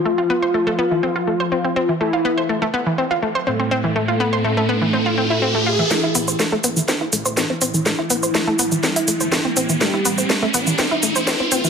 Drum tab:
HH |----------------|----------------|----------------|--o---o---o-o-o-|
SH |----------------|----------------|----------------|x-xxx-xxx-xxx-xx|
SD |----------------|----------------|----------------|o---o---o---o---|

HH |--o---o--oo---o-|--o---o---o-o-o-|
SH |x-xxx-xxx-xxx-xx|x-xxx-xxx-xxx-xx|
SD |o---o---o---o---|o---o---o---o---|